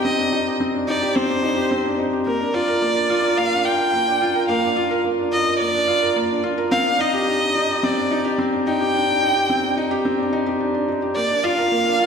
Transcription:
Already playing: C4 D4 D#4 G4
0.05 C4 D#5
0.19 D4
0.33 D#4
0.46 G4
0.60 C4
0.74 D4
0.88 D#4 D5
1.02 G4
1.16 C4 C5
1.29 D4
1.43 D#4
1.57 G4
1.71 C4
1.85 D4
1.99 D#4
2.13 G4
2.26 A#3 A#4
2.40 D4
2.54 F4 D5
2.68 A#4
2.82 A#3
2.96 D4
3.10 F4
3.24 A#4
3.38 A#3 F5
3.52 D4
3.65 F4 G5
3.80 A#4
3.94 A#3
4.08 D4
4.21 F4
4.36 A#4
4.48 A#3 F5
4.63 D4
4.76 F4
4.91 A#4
5.05 A#3
5.19 D4
5.32 F4 D#5
5.46 A#4
5.59 A#3 D5
5.74 D4
5.88 F4
6.02 A#4
6.16 A#3
6.30 D4
6.44 F4
6.58 A#4
6.71 C4 F5
6.85 D4
6.99 D#4 D#5
7.13 G4
7.27 D4
7.42 D4
7.55 D#4
7.70 G4
7.83 C4 D5
7.97 D4
8.11 D#4
8.25 G4
8.38 C4
8.53 D4
8.66 D#4 G5
8.81 G4
8.95 D4
9.08 D4
9.22 D#4
9.36 G4
9.49 C4
9.63 D4
9.77 D#4
9.91 G4
10.05 C4
10.19 D4
10.33 D#4
10.46 G4
10.60 D4
10.74 D4
10.88 D#4
11.02 G4
11.16 A#3 D5
11.30 D4
11.44 F4 F5
11.58 A#4
11.72 A#3
11.86 D4
12.00 F4

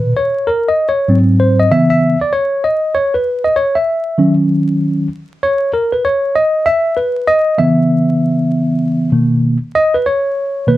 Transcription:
Already playing: A#2 B2 D#3 B4
0.17 C#5
0.47 A#4
0.68 D#5
0.89 C#5
1.08 G#2 F#3 C4
1.40 C5
1.59 D#5
1.71 C#3 E3 B3 E5
1.90 E5
2.21 D5
2.33 C#5
2.64 D#5
2.95 C#5
3.14 B4
3.44 D#5
3.56 C#5
3.75 E5
4.18 D#3 F#3 C#4
5.43 C#5
5.73 A#4
5.92 B4
6.05 C#5
6.35 D#5
6.66 E5
6.97 B4
7.28 D#5
7.58 C#3 E3 B3 E5
9.12 B2 D#3 A#3
9.75 D#5
9.94 B4
10.06 C#5
10.67 B2 D#3 A#3 B4

